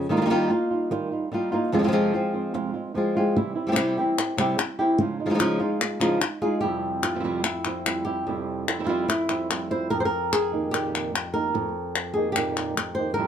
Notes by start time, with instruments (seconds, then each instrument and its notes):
Already playing: nylon-string guitar C4
0.09 nylon-string guitar D#3 G3 A#3 D#4 F4
0.17 nylon-string guitar G3 A#3 D#4 F4
0.21 nylon-string guitar G3 A#3 D#4 F4
0.26 nylon-string guitar G3 A#3 D#4 F4
0.30 nylon-string guitar D#3 G3 A#3 D#4 F4
0.50 nylon-string guitar A#3 D#4 F4, muted nylon-string guitar stroke
0.71 nylon-string guitar G3 D#4 F4
0.90 nylon-string guitar D#3 G3 D#4 F4, muted nylon-string guitar stroke
1.11 nylon-string guitar G3 D#4 F4
1.31 nylon-string guitar G3 A#3 D#4 F4, muted nylon-string guitar stroke
1.51 nylon-string guitar G3 A#3 D#4 F4
1.72 nylon-string guitar F2 C3 F3 G#3 C4 F4
1.79 nylon-string guitar C3 F3 G#3 C4 F4
1.83 nylon-string guitar C3 F3 G#3 C4 F4
1.88 nylon-string guitar C3 F3 G#3 C4 F4
1.92 nylon-string guitar F2 C3 F3 G#3 C4 F4
2.13 nylon-string guitar F3 G#3 C4 F4, muted nylon-string guitar stroke
2.33 nylon-string guitar F3 G#3 C4 F4
2.54 nylon-string guitar F2 C3 F3 G#3 C4 F4, muted nylon-string guitar stroke
2.74 nylon-string guitar F3 G#3 C4 F4
2.94 nylon-string guitar F3 G#3 C4 F4, muted nylon-string guitar stroke
3.15 nylon-string guitar F3 G#3 C4 F4
3.35 nylon-string guitar C3 E3 G3 C4 E4, muted nylon-string guitar stroke
3.55 nylon-string guitar G3 C4 E4
3.67 nylon-string guitar G3 C4 E4 G4
3.72 nylon-string guitar C3 G3 C4 E4 G4
3.76 nylon-string guitar G3 C4 E4 G4, clap
3.97 nylon-string guitar E3 G3 C4 E4 G4
4.18 muted nylon-string guitar stroke, clap
4.37 nylon-string guitar C3 G3 C4 E4 G4, clap
4.58 muted nylon-string guitar stroke, clap
4.79 nylon-string guitar G3 C4 E4 G4
4.98 nylon-string guitar C#3 F3 G#3 D#4 F4, muted nylon-string guitar stroke
5.20 nylon-string guitar G#3 D#4 F4
5.26 nylon-string guitar F3 G#3 D#4 F4
5.30 nylon-string guitar G#3 D#4 F4
5.34 nylon-string guitar F3 G#3 D#4 F4
5.39 nylon-string guitar C#3 F3 G#3 D#4 F4, clap
5.60 nylon-string guitar F3 G#3 D#4 F4
5.81 muted nylon-string guitar stroke, clap
6.00 nylon-string guitar C#3 F3 G#3 D#4 F4, clap
6.21 muted nylon-string guitar stroke, clap
6.42 nylon-string guitar G#3 D#4 F4 G#4
6.61 nylon-string guitar F2 C3 F3 G3 C4 E4 G4
7.03 nylon-string guitar F3 G3 C4 E4 F4, clap
7.15 nylon-string guitar C3 F3 G3 C4 E4
7.19 nylon-string guitar C3 F3 G3 C4 E4
7.24 nylon-string guitar F2 C3 F3 G3 C4 E4
7.44 nylon-string guitar E4, muted nylon-string guitar stroke, clap
7.65 nylon-string guitar F3 G3 C4 E4, clap
7.86 nylon-string guitar F3 G3 C4 E4, clap
8.05 nylon-string guitar F3 G3 C4 E4 G4
8.27 nylon-string guitar F2 C3 F3 G3 C4 E4
8.68 nylon-string guitar F3 G3 C4 E4, clap
8.79 nylon-string guitar C3 F3 G3 C4 E4
8.84 nylon-string guitar C3 F3 G3 C4 E4 F4
8.88 nylon-string guitar F2 C3 F3 G3 C4 E4
9.08 nylon-string guitar E4, muted nylon-string guitar stroke, clap
9.29 nylon-string guitar F3 G3 C4 E4, clap
9.50 nylon-string guitar F3 G3 C4 E4, clap
9.70 nylon-string guitar F3 G3 C4 E4 C5
9.90 nylon-string guitar F2 A#4, muted nylon-string guitar stroke
10.00 nylon-string guitar C5
10.05 nylon-string guitar A#4
10.33 nylon-string guitar G#4, clap
10.52 nylon-string guitar D#3 A#3 D#4 G4
10.71 nylon-string guitar F2 A#2 D#3 A#3 D#4 G4, clap
10.95 nylon-string guitar D#4, clap
11.13 muted nylon-string guitar stroke, clap
11.34 nylon-string guitar D#3 A#3 D#4 G4 A#4
11.54 nylon-string guitar F2, muted nylon-string guitar stroke
11.96 clap
12.14 nylon-string guitar A#3 D#4 G4 G#4
12.18 nylon-string guitar D#3
12.32 nylon-string guitar G4, clap
12.37 nylon-string guitar F2 A#2 D#3 A#3 D#4 G4
12.57 nylon-string guitar D#4, clap
12.77 muted nylon-string guitar stroke, clap
12.95 nylon-string guitar D#4 G4 C5
12.99 nylon-string guitar D#3 A#3
13.14 nylon-string guitar F2 A#4
13.18 nylon-string guitar F2 C3 F3 G3 C4 E4